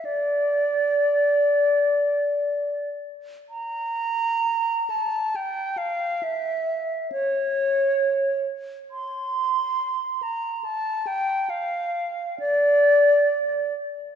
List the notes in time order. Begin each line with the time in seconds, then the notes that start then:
0.05 D5
3.49 A#5
4.90 A5
5.36 G5
5.78 F5
6.23 E5
7.12 C#5
8.91 C6
10.23 A#5
10.64 A5
11.07 G5
11.50 F5
12.40 D5